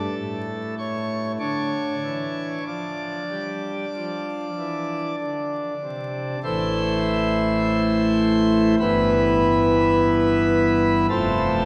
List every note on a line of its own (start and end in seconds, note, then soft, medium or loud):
0.00 0.15 D4 soft
0.00 0.75 A4 loud
0.18 1.37 A2 medium
0.78 1.32 C#5 medium
1.40 1.94 D3 medium
1.40 6.39 D4 soft
1.40 2.64 C#5 medium
2.04 2.59 E3 soft
2.67 3.22 F3 medium
2.67 5.16 D5 medium
3.31 3.85 G3 soft
3.95 4.48 F3 medium
4.58 5.11 E3 soft
5.20 5.74 D3 soft
5.83 6.35 C3 soft
6.44 8.75 A1 medium
6.44 8.75 A2 medium
6.44 8.75 E3 soft
6.44 8.75 A3 soft
6.44 8.75 E4 soft
6.44 8.75 C5 medium
8.79 11.07 G1 medium
8.79 11.07 G2 medium
8.79 11.07 E3 soft
8.79 11.07 B3 soft
8.79 11.07 E4 soft
8.79 11.07 B4 medium
11.10 11.65 F1 medium
11.10 11.65 F2 medium
11.10 11.65 A3 medium
11.10 11.65 C4 medium
11.10 11.65 F4 medium
11.10 11.65 A4 loud